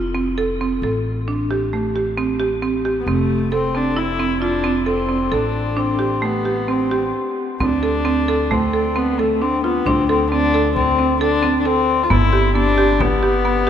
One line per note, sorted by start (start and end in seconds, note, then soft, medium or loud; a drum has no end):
0.00 0.79 F1 medium
0.00 0.11 F4 medium
0.15 0.34 C4 medium
0.38 0.56 A4 medium
0.61 0.79 C4 medium
0.82 3.02 A1 medium
0.82 1.20 A4 medium
1.28 1.46 D4 medium
1.51 1.69 G4 medium
1.73 1.91 A3 medium
1.96 2.14 G4 medium
2.18 2.36 C4 medium
2.40 2.58 G4 medium
2.62 2.81 C4 medium
2.85 3.03 G4 medium
3.00 3.09 B3 medium
3.07 5.28 F1 medium
3.07 3.52 A3 medium
3.07 3.44 C4 medium
3.52 3.78 C4 medium
3.52 3.70 A4 medium
3.75 3.93 C4 medium
3.75 4.00 D4 medium
3.97 4.15 E4 medium
3.97 4.41 E4 medium
4.20 4.38 C4 medium
4.42 4.84 D4 medium
4.42 4.60 F4 medium
4.64 4.83 C4 medium
4.86 5.35 C4 medium
4.86 5.05 A4 medium
5.09 5.27 C4 medium
5.32 7.11 A1 medium
5.32 5.79 D4 medium
5.32 5.68 A4 medium
5.77 6.26 C4 medium
5.77 5.95 D4 medium
5.99 6.18 G4 medium
6.22 6.41 A3 medium
6.22 6.70 B3 medium
6.45 6.64 G4 medium
6.68 6.87 C4 medium
6.68 7.15 C4 medium
6.91 7.10 G4 medium
7.60 9.83 D2 medium
7.60 7.79 C4 medium
7.60 8.53 D4 medium
7.60 frame drum soft
7.83 8.02 A4 medium
7.83 frame drum soft
8.05 8.24 C4 medium
8.28 8.47 A4 medium
8.51 8.70 A3 medium
8.51 8.98 C4 medium
8.51 frame drum soft
8.73 8.92 A4 medium
8.96 9.21 B3 medium
8.96 9.15 C4 medium
9.19 9.42 A3 medium
9.19 9.38 A4 medium
9.19 frame drum soft
9.41 9.63 C4 medium
9.41 9.60 D4 medium
9.64 9.87 B3 medium
9.64 9.83 F4 medium
9.86 12.06 D2 medium
9.86 10.09 C4 medium
9.86 10.05 D4 medium
9.86 frame drum medium
10.09 10.30 C4 medium
10.09 10.28 A4 medium
10.09 frame drum soft
10.30 10.50 C4 medium
10.30 10.72 D4 medium
10.54 10.90 A4 medium
10.76 11.18 C4 medium
10.76 frame drum soft
10.99 11.17 C4 medium
11.20 11.56 D4 medium
11.20 11.39 A4 medium
11.43 11.61 C4 medium
11.43 frame drum soft
11.59 11.68 D4 medium
11.65 12.05 C4 medium
11.65 12.02 A4 medium
12.03 12.12 F4 medium
12.10 13.70 G1 medium
12.10 12.29 B3 medium
12.10 12.54 E4 medium
12.10 frame drum medium
12.33 12.51 G4 medium
12.33 frame drum soft
12.55 12.74 B3 medium
12.55 13.02 D4 loud
12.78 12.96 G4 medium
13.00 13.70 B3 loud
13.00 13.19 B3 medium
13.00 frame drum medium
13.23 13.41 G4 medium
13.45 13.63 B3 medium